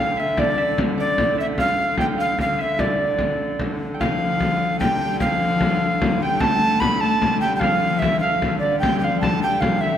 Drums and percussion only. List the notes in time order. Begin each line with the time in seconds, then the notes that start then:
0.18 frame drum
0.37 frame drum
0.58 frame drum
0.78 frame drum
1.18 frame drum
1.38 frame drum
1.58 frame drum
1.78 frame drum
1.98 frame drum
2.39 frame drum
2.59 frame drum
2.79 frame drum
3.19 frame drum
3.39 frame drum
3.59 frame drum
3.81 frame drum
4.01 frame drum
4.22 frame drum
4.40 frame drum
4.81 frame drum
5.01 frame drum
5.20 frame drum
5.41 frame drum
5.61 frame drum
6.02 frame drum
6.21 frame drum
6.40 frame drum
6.61 frame drum
6.81 frame drum
7.22 frame drum
7.42 frame drum
7.61 frame drum
8.02 frame drum
8.42 frame drum
8.83 frame drum
9.04 frame drum
9.23 frame drum
9.62 frame drum
9.82 frame drum